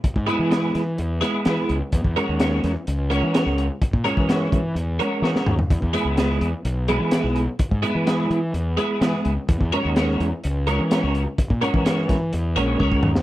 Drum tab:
HH |x-x-x-x-x-x-x-x-|x-x-x-x-x-x-x-x-|x-x-x-x-x-x-----|x-x-x-x-x-x-x-x-|
SD |----o-o---o-o---|----o-o-----o---|----o-------oo--|----o-------o---|
T2 |----------------|----------------|--------------o-|----------------|
FT |----------------|----------------|---------------o|----------------|
BD |oo--------------|oo--------------|oo-o--o---------|oo--------------|

HH |x-x-x-x-x-x-x-x-|x-x-x-x-x-x-x-x-|x-x-x-x-x-x-----|
SD |----o-------o---|----o-------o---|----o-o--------o|
T2 |----------------|----------------|--------------o-|
FT |----------------|----------------|----------------|
BD |oo--------------|oo--------------|oo-o--o-----oo--|